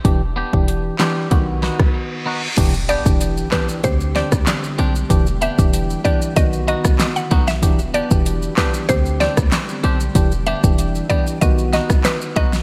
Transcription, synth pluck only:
X:1
M:4/4
L:1/16
Q:1/4=95
K:Em
V:1 name="Synth pluck"
z16 | z2 d z3 B z c z d z4 z | z2 e z3 d z ^d z d z2 f z e | z2 d z3 B z c z d z4 z |
z2 e z3 d z ^d z d z B z d z |]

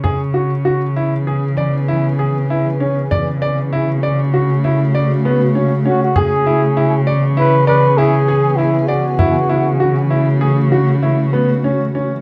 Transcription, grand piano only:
X:1
M:5/4
L:1/8
Q:1/4=98
K:Emix
V:1 name="Grand piano"
G F F E G d E G E C | d d E d F E d B, C C | G E E d E d E G E d | E E F E G F E B, C C |]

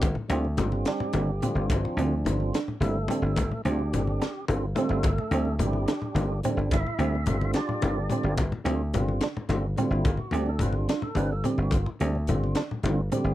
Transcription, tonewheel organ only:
X:1
M:6/8
L:1/16
Q:3/8=72
K:C
V:1 name="Tonewheel organ"
z6 [G,CDG]6 | [F,CDF]6 z2 [A,A]4- | [A,A]2 [DG]6 z2 [A,A]2- | [A,A]4 [DG]6 z2 |
[Ee]6 [DFGd]6 | z8 z3 E | F ^F G A B D =F A B A G ^F | F2 z8 z2 |]
V:2 name="Tonewheel organ" clef=bass
z2 [D,G,CF]2 [D,G,CF]2 z2 [D,G,CD]2 [D,G,CF]2 | z2 [D,G,CF]2 [D,G,CF]2 z2 [D,G,CE]2 [D,G,CD]2 | z2 [D,G,CF]2 [D,G,CD]2 z2 [D,G,CF]2 [D,G,CF]2 | z2 [D,G,CD]2 [D,G,CE]2 z2 [D,G,CF]2 [D,G,CD]2 |
z2 [D,G,CE]2 [D,G,CF]2 z2 [D,G,CF]2 [D,G,CF]2 | z2 [D,G,CF]2 [D,G,CF]2 z2 [D,G,CF]2 [D,G,CF]2 | z2 [D,G,CD]2 [D,G,CF]2 z2 [D,G,CD]2 [D,G,C]2 | z2 [D,G,CD]2 [D,G,CF]2 z2 [D,G,CF]2 [D,G,CG]2 |]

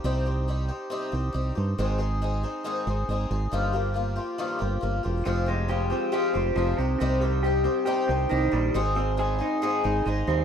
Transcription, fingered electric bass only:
X:1
M:4/4
L:1/8
Q:1/4=138
K:Cphr
V:1 name="Fingered electric bass" clef=bass
C,,4 z C,, C,, G,, | A,,,4 z A,,, A,,, A,,, | G,,,4 z G,,, G,,, =E,,, | F,,,4 z F,,, F,,, C,, |
C,,4 z C,, C,, B,,, | A,,,4 z A,,, A,,, E,, |]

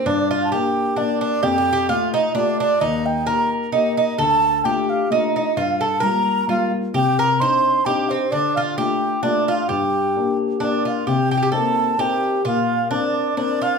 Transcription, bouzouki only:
X:1
M:3/4
L:1/16
Q:"Swing" 1/4=131
K:Gm
V:1 name="Bouzouki"
D2 F2 G4 D2 D2 | (3G2 G2 G2 F2 E2 D2 D2 | E4 B4 E2 E2 | A4 G4 E2 E2 |
F2 A2 B4 F2 z2 | G2 B2 c4 G2 C2 | D2 F2 G4 D2 F2 | G8 D2 F2 |
G2 G/2 G/2 G A4 G4 | F4 D4 D2 F2 |]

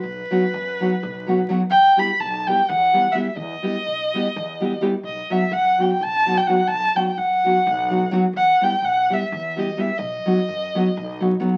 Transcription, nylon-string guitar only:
X:1
M:7/8
L:1/8
Q:1/4=127
K:none
V:1 name="Nylon-string guitar"
z [^F,B,^D^F] z [F,B,DF] z [F,B,DF] [F,B,DF] | z [G,B,EG] z [G,B,EG] z [G,B,EG] [G,B,EG] | z [G,B,EG] z [G,B,EG] z [G,B,EG] [G,B,EG] | z [^F,B,^D^F] z [F,B,DF] z [F,B,DF] [F,B,DF] |
z [^F,B,^D^F] z [F,B,DF] z [F,B,DF] [F,B,DF] | z [G,B,EG] z [G,B,EG] z [G,B,EG] [G,B,EG] | z [^F,B,^D^F] z [F,B,DF] z [F,B,DF] [F,B,DF] |]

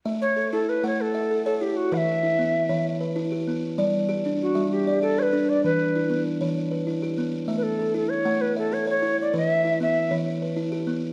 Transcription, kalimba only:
X:1
M:12/8
L:1/8
Q:3/8=130
K:Amix
V:1 name="Kalimba"
e2 A3 f2 e2 c3 | B2 E3 c2 B2 G3 | d2 G3 e2 d2 B3 | z2 E3 c2 B2 G3 |
e2 A3 f2 e2 c3 | B2 E3 c2 B2 G3 |]
V:2 name="Kalimba"
A,2 z E2 A,2 z A2 E2 | E,2 z B,2 E,2 z E2 B,2 | G,2 z D2 G,2 z G2 D2 | E,2 z B,2 E,2 z E2 B,2 |
A,2 z E2 A,2 z A2 E2 | E,2 z B,2 E,2 z E2 B,2 |]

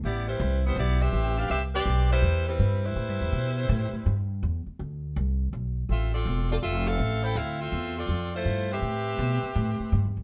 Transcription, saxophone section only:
X:1
M:4/4
L:1/8
Q:"Swing" 1/4=164
K:Am
V:1 name="Saxophone section"
[B,EGd] [G,EBc]2 [G,B,Ec] [B,EGd] [CGBe]2 [DGBf] | [CGBe] [CGBd]2 [G,EBc]2 [G,CEB]2 [G,EBc]- | [G,EBc]6- [G,EBc] z | z8 |
[CFAe] [CFAd]2 [CFAd] [CFAe] [CAef]2 [EAcg] | [CEAf] [CFAe]2 [CFAd]2 [A,EFc]2 [CGBe]- | [CGBe]6- [CGBe] z |]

